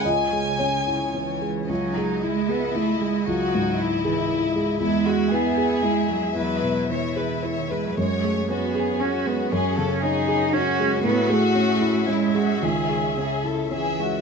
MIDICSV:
0, 0, Header, 1, 5, 480
1, 0, Start_track
1, 0, Key_signature, 4, "minor"
1, 0, Tempo, 542495
1, 49, Time_signature, 3, 2, 24, 8
1, 1968, Tempo, 514139
1, 5328, Tempo, 534283
1, 7728, Tempo, 509338
1, 10608, Tempo, 543971
1, 12955, End_track
2, 0, Start_track
2, 0, Title_t, "String section"
2, 0, Program_c, 0, 48
2, 0, Note_on_c, 0, 56, 35
2, 0, Note_on_c, 0, 61, 42
2, 0, Note_on_c, 0, 73, 37
2, 1467, Note_off_c, 0, 56, 0
2, 1501, Note_off_c, 0, 61, 0
2, 1504, Note_off_c, 0, 73, 0
2, 1507, Note_on_c, 0, 56, 42
2, 1509, Note_on_c, 0, 64, 39
2, 1512, Note_on_c, 0, 75, 36
2, 4347, Note_off_c, 0, 75, 0
2, 4377, Note_on_c, 0, 76, 45
2, 7226, Note_off_c, 0, 56, 0
2, 7227, Note_off_c, 0, 64, 0
2, 7258, Note_off_c, 0, 76, 0
2, 7262, Note_on_c, 0, 66, 40
2, 7263, Note_on_c, 0, 68, 42
2, 7263, Note_on_c, 0, 73, 39
2, 10126, Note_off_c, 0, 66, 0
2, 10126, Note_on_c, 0, 76, 48
2, 12955, Note_off_c, 0, 68, 0
2, 12955, Note_off_c, 0, 73, 0
2, 12955, Note_off_c, 0, 76, 0
2, 12955, End_track
3, 0, Start_track
3, 0, Title_t, "Violin section"
3, 0, Program_c, 1, 48
3, 48, Note_on_c, 1, 80, 55
3, 1258, Note_off_c, 1, 80, 0
3, 1492, Note_on_c, 1, 61, 49
3, 1715, Note_off_c, 1, 61, 0
3, 1723, Note_on_c, 1, 63, 44
3, 1961, Note_on_c, 1, 64, 51
3, 1962, Note_off_c, 1, 63, 0
3, 2935, Note_off_c, 1, 64, 0
3, 2941, Note_on_c, 1, 66, 61
3, 3415, Note_off_c, 1, 66, 0
3, 3422, Note_on_c, 1, 64, 59
3, 4359, Note_off_c, 1, 64, 0
3, 4370, Note_on_c, 1, 64, 64
3, 4604, Note_off_c, 1, 64, 0
3, 4612, Note_on_c, 1, 66, 61
3, 4842, Note_on_c, 1, 68, 57
3, 4848, Note_off_c, 1, 66, 0
3, 5794, Note_on_c, 1, 71, 54
3, 5801, Note_off_c, 1, 68, 0
3, 6230, Note_off_c, 1, 71, 0
3, 6299, Note_on_c, 1, 73, 50
3, 6521, Note_off_c, 1, 73, 0
3, 6540, Note_on_c, 1, 71, 42
3, 6779, Note_off_c, 1, 71, 0
3, 6779, Note_on_c, 1, 73, 48
3, 7020, Note_off_c, 1, 73, 0
3, 7022, Note_on_c, 1, 71, 44
3, 7260, Note_on_c, 1, 73, 52
3, 7261, Note_off_c, 1, 71, 0
3, 7696, Note_off_c, 1, 73, 0
3, 7732, Note_on_c, 1, 66, 46
3, 7963, Note_on_c, 1, 68, 45
3, 7972, Note_off_c, 1, 66, 0
3, 8204, Note_on_c, 1, 66, 51
3, 8208, Note_off_c, 1, 68, 0
3, 8691, Note_off_c, 1, 66, 0
3, 8699, Note_on_c, 1, 68, 55
3, 8933, Note_off_c, 1, 68, 0
3, 8938, Note_on_c, 1, 69, 53
3, 9166, Note_on_c, 1, 68, 54
3, 9171, Note_off_c, 1, 69, 0
3, 9635, Note_off_c, 1, 68, 0
3, 9641, Note_on_c, 1, 66, 58
3, 10111, Note_off_c, 1, 66, 0
3, 10129, Note_on_c, 1, 66, 80
3, 11061, Note_off_c, 1, 66, 0
3, 11074, Note_on_c, 1, 64, 55
3, 11313, Note_on_c, 1, 66, 51
3, 11314, Note_off_c, 1, 64, 0
3, 11556, Note_off_c, 1, 66, 0
3, 11563, Note_on_c, 1, 68, 51
3, 11998, Note_off_c, 1, 68, 0
3, 12050, Note_on_c, 1, 68, 45
3, 12270, Note_off_c, 1, 68, 0
3, 12281, Note_on_c, 1, 69, 44
3, 12511, Note_on_c, 1, 76, 46
3, 12512, Note_on_c, 1, 68, 46
3, 12521, Note_off_c, 1, 69, 0
3, 12755, Note_off_c, 1, 68, 0
3, 12760, Note_on_c, 1, 66, 42
3, 12955, Note_off_c, 1, 66, 0
3, 12955, Note_off_c, 1, 76, 0
3, 12955, End_track
4, 0, Start_track
4, 0, Title_t, "Felt piano"
4, 0, Program_c, 2, 0
4, 0, Control_c, 2, 64, 127
4, 44, Note_on_c, 2, 75, 64
4, 49, Note_on_c, 2, 37, 41
4, 68, Control_c, 2, 64, 0
4, 198, Control_c, 2, 64, 127
4, 287, Note_on_c, 2, 56, 34
4, 496, Note_off_c, 2, 75, 0
4, 518, Note_on_c, 2, 73, 41
4, 527, Note_on_c, 2, 61, 34
4, 675, Note_off_c, 2, 56, 0
4, 771, Note_on_c, 2, 64, 31
4, 914, Note_off_c, 2, 61, 0
4, 1011, Note_on_c, 2, 61, 29
4, 1159, Note_off_c, 2, 64, 0
4, 1215, Note_off_c, 2, 73, 0
4, 1252, Note_on_c, 2, 56, 29
4, 1403, Note_off_c, 2, 61, 0
4, 1465, Note_off_c, 2, 37, 0
4, 1497, Note_off_c, 2, 56, 0
4, 1497, Note_on_c, 2, 37, 39
4, 1520, Control_c, 2, 64, 0
4, 1682, Control_c, 2, 64, 127
4, 1746, Note_on_c, 2, 56, 39
4, 1974, Note_on_c, 2, 64, 35
4, 2119, Note_off_c, 2, 56, 0
4, 2216, Note_on_c, 2, 68, 39
4, 2358, Note_off_c, 2, 64, 0
4, 2460, Note_on_c, 2, 64, 42
4, 2601, Note_off_c, 2, 68, 0
4, 2705, Note_on_c, 2, 56, 40
4, 2846, Note_off_c, 2, 64, 0
4, 2901, Note_off_c, 2, 37, 0
4, 2947, Note_on_c, 2, 37, 46
4, 2958, Control_c, 2, 64, 0
4, 3090, Note_off_c, 2, 56, 0
4, 3100, Control_c, 2, 64, 127
4, 3198, Note_on_c, 2, 44, 43
4, 3431, Note_on_c, 2, 64, 40
4, 3577, Note_off_c, 2, 44, 0
4, 3669, Note_on_c, 2, 68, 46
4, 3813, Note_off_c, 2, 64, 0
4, 3909, Note_on_c, 2, 64, 46
4, 4050, Note_off_c, 2, 68, 0
4, 4145, Note_on_c, 2, 56, 49
4, 4286, Note_off_c, 2, 64, 0
4, 4344, Note_off_c, 2, 37, 0
4, 4374, Note_on_c, 2, 40, 51
4, 4379, Note_off_c, 2, 56, 0
4, 4394, Control_c, 2, 64, 0
4, 4567, Control_c, 2, 64, 127
4, 4618, Note_on_c, 2, 56, 49
4, 4860, Note_on_c, 2, 64, 42
4, 4994, Note_off_c, 2, 56, 0
4, 5095, Note_on_c, 2, 68, 49
4, 5237, Note_off_c, 2, 64, 0
4, 5333, Note_on_c, 2, 64, 42
4, 5472, Note_off_c, 2, 68, 0
4, 5564, Note_on_c, 2, 56, 39
4, 5709, Note_off_c, 2, 64, 0
4, 5766, Note_off_c, 2, 40, 0
4, 5801, Note_on_c, 2, 40, 45
4, 5822, Control_c, 2, 64, 0
4, 5952, Note_off_c, 2, 56, 0
4, 5955, Control_c, 2, 64, 127
4, 6050, Note_on_c, 2, 47, 36
4, 6296, Note_on_c, 2, 64, 37
4, 6439, Note_off_c, 2, 47, 0
4, 6530, Note_on_c, 2, 68, 34
4, 6681, Note_off_c, 2, 64, 0
4, 6776, Note_on_c, 2, 64, 36
4, 6919, Note_off_c, 2, 68, 0
4, 7023, Note_on_c, 2, 56, 36
4, 7163, Note_off_c, 2, 64, 0
4, 7221, Note_off_c, 2, 40, 0
4, 7257, Note_on_c, 2, 42, 41
4, 7261, Note_off_c, 2, 56, 0
4, 7276, Control_c, 2, 64, 0
4, 7442, Control_c, 2, 64, 127
4, 7495, Note_on_c, 2, 56, 36
4, 7733, Note_on_c, 2, 61, 37
4, 7873, Note_off_c, 2, 56, 0
4, 7970, Note_on_c, 2, 68, 39
4, 8118, Note_off_c, 2, 61, 0
4, 8209, Note_on_c, 2, 61, 36
4, 8357, Note_off_c, 2, 68, 0
4, 8450, Note_on_c, 2, 56, 38
4, 8597, Note_off_c, 2, 61, 0
4, 8657, Note_off_c, 2, 42, 0
4, 8695, Note_on_c, 2, 42, 42
4, 8713, Control_c, 2, 64, 0
4, 8838, Note_off_c, 2, 56, 0
4, 8884, Control_c, 2, 64, 127
4, 8936, Note_on_c, 2, 49, 42
4, 9179, Note_on_c, 2, 61, 40
4, 9317, Note_off_c, 2, 49, 0
4, 9412, Note_on_c, 2, 68, 45
4, 9556, Note_off_c, 2, 61, 0
4, 9654, Note_on_c, 2, 61, 45
4, 9792, Note_off_c, 2, 68, 0
4, 9898, Note_on_c, 2, 56, 47
4, 10032, Note_off_c, 2, 61, 0
4, 10087, Note_off_c, 2, 42, 0
4, 10121, Note_on_c, 2, 45, 54
4, 10130, Note_off_c, 2, 56, 0
4, 10141, Control_c, 2, 64, 0
4, 10294, Control_c, 2, 64, 127
4, 10366, Note_on_c, 2, 68, 48
4, 10608, Note_on_c, 2, 61, 43
4, 10749, Note_off_c, 2, 68, 0
4, 10836, Note_on_c, 2, 64, 48
4, 10983, Note_off_c, 2, 61, 0
4, 11069, Note_on_c, 2, 61, 44
4, 11218, Note_off_c, 2, 64, 0
4, 11308, Note_on_c, 2, 56, 41
4, 11456, Note_off_c, 2, 61, 0
4, 11520, Note_off_c, 2, 45, 0
4, 11553, Note_off_c, 2, 56, 0
4, 11555, Note_on_c, 2, 37, 41
4, 11576, Control_c, 2, 64, 0
4, 11728, Control_c, 2, 64, 127
4, 11793, Note_on_c, 2, 56, 35
4, 12039, Note_on_c, 2, 61, 31
4, 12183, Note_off_c, 2, 56, 0
4, 12273, Note_on_c, 2, 64, 35
4, 12424, Note_off_c, 2, 61, 0
4, 12510, Note_on_c, 2, 61, 35
4, 12662, Note_off_c, 2, 64, 0
4, 12761, Note_on_c, 2, 56, 32
4, 12905, Note_off_c, 2, 61, 0
4, 12955, Note_off_c, 2, 37, 0
4, 12955, Note_off_c, 2, 56, 0
4, 12955, End_track
5, 0, Start_track
5, 0, Title_t, "Cello"
5, 0, Program_c, 3, 42
5, 56, Note_on_c, 3, 49, 45
5, 1017, Note_off_c, 3, 49, 0
5, 1021, Note_on_c, 3, 52, 53
5, 1495, Note_on_c, 3, 54, 63
5, 1508, Note_off_c, 3, 52, 0
5, 1972, Note_on_c, 3, 56, 66
5, 1986, Note_off_c, 3, 54, 0
5, 2223, Note_on_c, 3, 59, 68
5, 2238, Note_off_c, 3, 56, 0
5, 2460, Note_on_c, 3, 57, 71
5, 2474, Note_off_c, 3, 59, 0
5, 2701, Note_on_c, 3, 56, 62
5, 2715, Note_off_c, 3, 57, 0
5, 2935, Note_on_c, 3, 54, 70
5, 2949, Note_off_c, 3, 56, 0
5, 3658, Note_off_c, 3, 54, 0
5, 3664, Note_on_c, 3, 52, 61
5, 3900, Note_off_c, 3, 52, 0
5, 4365, Note_on_c, 3, 56, 79
5, 4847, Note_on_c, 3, 59, 81
5, 4861, Note_off_c, 3, 56, 0
5, 5329, Note_on_c, 3, 56, 73
5, 5342, Note_off_c, 3, 59, 0
5, 5562, Note_on_c, 3, 54, 65
5, 5576, Note_off_c, 3, 56, 0
5, 5796, Note_off_c, 3, 54, 0
5, 5802, Note_on_c, 3, 54, 76
5, 6292, Note_on_c, 3, 52, 59
5, 6306, Note_off_c, 3, 54, 0
5, 6909, Note_on_c, 3, 51, 50
5, 6922, Note_off_c, 3, 52, 0
5, 7015, Note_on_c, 3, 52, 54
5, 7029, Note_off_c, 3, 51, 0
5, 7152, Note_on_c, 3, 54, 61
5, 7166, Note_off_c, 3, 52, 0
5, 7250, Note_off_c, 3, 54, 0
5, 7256, Note_on_c, 3, 56, 60
5, 7491, Note_on_c, 3, 57, 60
5, 7505, Note_off_c, 3, 56, 0
5, 7729, Note_on_c, 3, 59, 64
5, 7744, Note_off_c, 3, 57, 0
5, 8204, Note_on_c, 3, 61, 68
5, 8218, Note_off_c, 3, 59, 0
5, 8455, Note_on_c, 3, 59, 62
5, 8469, Note_off_c, 3, 61, 0
5, 8698, Note_on_c, 3, 61, 69
5, 8712, Note_off_c, 3, 59, 0
5, 9172, Note_on_c, 3, 63, 83
5, 9186, Note_off_c, 3, 61, 0
5, 9650, Note_on_c, 3, 61, 89
5, 9665, Note_off_c, 3, 63, 0
5, 10122, Note_off_c, 3, 61, 0
5, 10128, Note_on_c, 3, 59, 87
5, 10373, Note_on_c, 3, 57, 77
5, 10387, Note_off_c, 3, 59, 0
5, 11064, Note_off_c, 3, 57, 0
5, 11069, Note_on_c, 3, 56, 80
5, 11550, Note_on_c, 3, 51, 68
5, 11563, Note_off_c, 3, 56, 0
5, 12037, Note_on_c, 3, 49, 49
5, 12051, Note_off_c, 3, 51, 0
5, 12515, Note_off_c, 3, 49, 0
5, 12521, Note_on_c, 3, 52, 55
5, 12955, Note_off_c, 3, 52, 0
5, 12955, End_track
0, 0, End_of_file